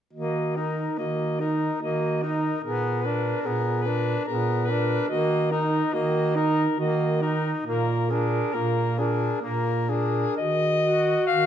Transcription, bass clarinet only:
0, 0, Header, 1, 2, 480
1, 0, Start_track
1, 0, Key_signature, -6, "minor"
1, 0, Tempo, 842697
1, 77, Time_signature, 3, 2, 24, 8
1, 1036, Tempo, 814111
1, 2476, Tempo, 836820
1, 3916, Tempo, 883652
1, 5356, Tempo, 955414
1, 5836, Tempo, 892857
1, 6419, End_track
2, 0, Start_track
2, 0, Title_t, "Bass clarinet"
2, 0, Program_c, 0, 71
2, 76, Note_on_c, 0, 51, 31
2, 503, Note_off_c, 0, 51, 0
2, 555, Note_on_c, 0, 51, 33
2, 977, Note_off_c, 0, 51, 0
2, 1027, Note_on_c, 0, 51, 33
2, 1458, Note_off_c, 0, 51, 0
2, 1510, Note_on_c, 0, 46, 34
2, 1934, Note_off_c, 0, 46, 0
2, 1993, Note_on_c, 0, 46, 41
2, 2418, Note_off_c, 0, 46, 0
2, 2477, Note_on_c, 0, 46, 41
2, 2894, Note_off_c, 0, 46, 0
2, 2952, Note_on_c, 0, 51, 43
2, 3377, Note_off_c, 0, 51, 0
2, 3438, Note_on_c, 0, 51, 51
2, 3861, Note_off_c, 0, 51, 0
2, 3912, Note_on_c, 0, 51, 48
2, 4335, Note_off_c, 0, 51, 0
2, 4389, Note_on_c, 0, 46, 46
2, 4813, Note_off_c, 0, 46, 0
2, 4872, Note_on_c, 0, 46, 45
2, 5299, Note_off_c, 0, 46, 0
2, 5356, Note_on_c, 0, 46, 38
2, 5782, Note_off_c, 0, 46, 0
2, 5837, Note_on_c, 0, 51, 38
2, 6265, Note_off_c, 0, 51, 0
2, 6321, Note_on_c, 0, 51, 40
2, 6419, Note_off_c, 0, 51, 0
2, 6419, End_track
0, 0, End_of_file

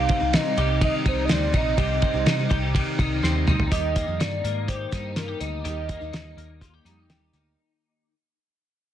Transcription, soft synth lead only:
0, 0, Header, 1, 2, 480
1, 0, Start_track
1, 0, Key_signature, -3, "major"
1, 0, Tempo, 483481
1, 1767, Time_signature, 4, 2, 24, 8
1, 8874, End_track
2, 0, Start_track
2, 0, Title_t, "Soft synth lead"
2, 0, Program_c, 0, 80
2, 0, Note_on_c, 0, 77, 110
2, 347, Note_on_c, 0, 75, 101
2, 362, Note_off_c, 0, 77, 0
2, 818, Note_off_c, 0, 75, 0
2, 837, Note_on_c, 0, 75, 100
2, 939, Note_off_c, 0, 75, 0
2, 1075, Note_on_c, 0, 72, 98
2, 1241, Note_on_c, 0, 75, 70
2, 1256, Note_off_c, 0, 72, 0
2, 1316, Note_on_c, 0, 74, 101
2, 1331, Note_off_c, 0, 75, 0
2, 1555, Note_on_c, 0, 75, 118
2, 1570, Note_off_c, 0, 74, 0
2, 3217, Note_off_c, 0, 75, 0
2, 3687, Note_on_c, 0, 75, 120
2, 4171, Note_on_c, 0, 74, 99
2, 4186, Note_off_c, 0, 75, 0
2, 4647, Note_on_c, 0, 72, 92
2, 4662, Note_off_c, 0, 74, 0
2, 5129, Note_on_c, 0, 70, 82
2, 5144, Note_off_c, 0, 72, 0
2, 5365, Note_on_c, 0, 75, 109
2, 5380, Note_off_c, 0, 70, 0
2, 7047, Note_off_c, 0, 75, 0
2, 8874, End_track
0, 0, End_of_file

